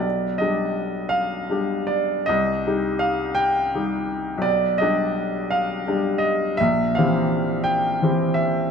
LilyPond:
\new Staff \with { instrumentName = "Upright piano" } { \time 12/8 \key c \minor \tempo 4. = 55 << { d''8 ees''4 f''4 d''8 ees''4 f''8 g''4. | d''8 ees''4 f''4 ees''8 e''8 f''4 g''4 e''8 | } \\ { b,,8 <g d' g'>4. <g d' g'>4 c,8 <g ees' g'>4. <g ees' g'>4 | b,,8 <g d' g'>4. <g d' g'>4 bes,,8 <e c' g'>4. <e c' g'>4 | } >> }